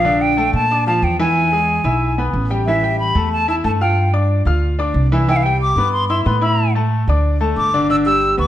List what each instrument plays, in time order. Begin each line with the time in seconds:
Already playing: upright bass A#1, flute F5
0.05 grand piano D3 D4 D5
0.21 flute G5
0.37 grand piano A3 A4 A5
0.53 upright bass A#2, flute A5
0.71 grand piano D4 D5 D6
0.87 grand piano F3 F4 F5, flute A5
1.02 upright bass E2, flute G5
1.19 grand piano E3 E4 E5, flute G#5
1.52 grand piano G#3 G#4 G#5
1.84 upright bass B1, grand piano E4 E5 E6
2.18 grand piano B3 B4 B5
2.33 upright bass A1
2.50 grand piano G3 G4 G5
2.67 grand piano E3 E4 E5, flute E5
2.83 grand piano G3 G4 G5
2.99 flute B5
3.15 upright bass E2, grand piano A3 A4 A5
3.32 flute A5
3.48 grand piano E4 E5 E6, flute A5
3.64 upright bass G2, grand piano A3 A4 A5, flute A5
3.81 grand piano F4 F5 F6, flute G5
4.13 grand piano D4 D5 D6
4.45 upright bass D2, grand piano F4 F5 F6
4.79 grand piano D4 D5 D6
4.94 upright bass C2
5.12 grand piano E3 E4 E5
5.28 grand piano E3 E4 E5, flute G5
5.36 flute F5
5.43 grand piano G3 G4 G5, flute G5
5.61 flute D6
5.76 upright bass G2, grand piano B3 B4 B5
5.92 flute C6
6.09 grand piano E4 E5 E6, flute C6
6.25 upright bass A2, grand piano B3 B4 B5, flute C6
6.41 grand piano E4 E5 E6, flute B5
6.75 grand piano A3 A4 A5
7.07 upright bass D2, grand piano D4 D5 D6
7.41 grand piano A3 A4 A5
7.56 upright bass G1, flute D6
7.74 grand piano D3 D4 D5
7.89 grand piano D3 D4 D5, flute E6
8.06 grand piano G3 G4 G5, flute E6
8.38 upright bass D2, grand piano B3 B4 B5, flute D6